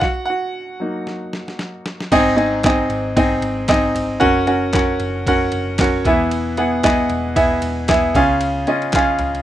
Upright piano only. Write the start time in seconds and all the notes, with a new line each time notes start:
0.00 F#4 F#5
0.26 F#5
0.30 F#4
0.80 F#3 A#3 D#4
2.12 G#2 C4 D#4 G#4 D#5
2.37 C4 D#4 G#4 D#5
2.65 C4 D#4 G#4 D#5
3.16 C4 D#4 G#4 D#5
3.69 C4 D#4 G#4 D#5
4.20 C#4 F#4 A#4 F#5
4.47 C#4 F#4 A#4 F#5
4.74 C#4 F#4 A#4 F#5
5.28 C#4 F#4 A#4 F#5
5.80 C#4 F#4 A#4 C#5
6.06 E3 B3 E4 G#4 E5
6.58 B3 E4 G#4 F#5
6.83 B3 E4 G#4 D#5
7.36 B3 E4 G#4 E5
7.88 B3 E4 G#4 E5
8.16 C#3 C#4 F4 G#4 F5
8.67 C#4 F4 G#4 D#5
8.95 C#4 F4 G#4 F5